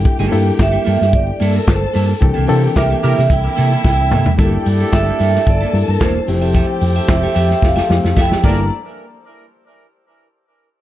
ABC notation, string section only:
X:1
M:4/4
L:1/8
Q:1/4=111
K:Gdor
V:1 name="String section"
[Gg]4- [Gg] [Aa]3 | [Gg]4 [Ee]4 | [Gg]4 [Aa]3 [Gg]- | [Gg]6 [Ee] [B,Ad] |
z8 |]